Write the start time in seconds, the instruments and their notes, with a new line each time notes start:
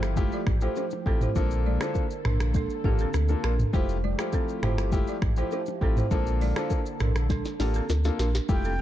Already playing: sub bass G1, analog synth pad F3 A3 G4, grand piano A3 E4 F4 G4
0.03 finger snap, cross-stick, shaker
0.16 grand piano A3 E4 F4 G4, kick, low conga, shaker
0.32 balafon F4 D5, shaker
0.46 sub bass A1, finger snap, kick, cross-stick, mid tom, low bongo
0.61 grand piano A3 E4 F4 G4, balafon E4 C5, shaker
0.76 balafon E4 C5, high bongo, shaker
0.91 low bongo, shaker
1.06 sub bass A1, grand piano A3 E4 F4 G4, balafon C4 A4, kick
1.21 balafon E4 C5, mid tom, shaker
1.35 sub bass A#1, analog synth pad D3 A#3 A4, grand piano A#3 D4 F4 A4, balafon F4 C5, kick, low conga, shaker
1.51 shaker
1.66 balafon F4 D5, low conga
1.81 grand piano A#3 D4 F4 A4, balafon E4 C5, finger snap, cross-stick, shaker
1.94 kick, high bongo, shaker
2.10 shaker
2.25 sub bass A#1, balafon D4 A#4, finger snap, cross-stick, mid tom
2.40 finger snap, cross-stick, shaker
2.54 balafon D4 A4, kick, low conga, shaker
2.70 shaker
2.84 sub bass A1, grand piano A#3 D4 F4 A4, balafon A#3 G4, kick, mid tom, low bongo
2.99 balafon C4 A4, shaker
3.14 sub bass D2, finger snap, cross-stick, high bongo, shaker
3.29 grand piano A#3 D4 F4 A4, low bongo, shaker
3.44 sub bass A#1, balafon D4 A#4, finger snap, cross-stick
3.59 mid tom, shaker
3.73 sub bass F1, analog synth pad F3 A3 G4, grand piano A3 E4 F4 G4, balafon E4 C5, kick, low conga, shaker
3.89 shaker
4.04 balafon F4 D5, low conga
4.18 grand piano A3 E4 F4 G4, balafon E4 C5, finger snap, cross-stick, shaker
4.32 balafon C4 A4, kick, high bongo, shaker
4.48 shaker
4.62 sub bass G1, grand piano A3 E4 F4 G4, balafon E4 C5, finger snap, cross-stick, mid tom
4.78 finger snap, cross-stick, shaker
4.91 grand piano A3 E4 F4 G4, kick, low conga, shaker
5.07 balafon F4 D5, shaker
5.22 sub bass A1, finger snap, kick, cross-stick, mid tom, low bongo
5.36 grand piano A3 E4 F4 G4, balafon E4 C5, shaker
5.51 balafon E4 C5, high bongo, shaker
5.66 low bongo, shaker
5.81 sub bass A1, grand piano A3 E4 F4 G4, balafon C4 A4, kick
5.97 balafon E4 C5, mid tom, shaker
6.11 sub bass A#1, analog synth pad D3 A#3 A4, grand piano A#3 D4 F4 A4, balafon F4 C5, kick, low conga, shaker
6.27 shaker
6.41 balafon F4 D5, open hi-hat, low bongo, low conga, shaker
6.56 grand piano A#3 D4 F4 A4, balafon E4 C5, finger snap, cross-stick, low bongo, shaker
6.70 kick, high bongo, shaker
6.86 shaker
7.00 sub bass A#1, balafon D4 A#4, finger snap, cross-stick, mid tom, shaker
7.16 finger snap, cross-stick, shaker
7.29 balafon D4 A4, kick, snare, low conga, shaker
7.45 snare, shaker
7.59 sub bass A1, grand piano A#3 D4 F4 A4, balafon A#3 G4, snare, open hi-hat, low bongo, shaker
7.74 balafon C4 A4, shaker
7.89 sub bass D2, snare, high bongo, shaker
8.04 grand piano A#3 D4 F4 A4, snare, low bongo, shaker
8.19 sub bass A#1, balafon D4 A#4, snare, shaker
8.35 snare, shaker
8.49 sub bass F1, grand piano A3 E4 F4 G4, flute G5, kick, low conga, shaker
8.64 balafon C4 A4, shaker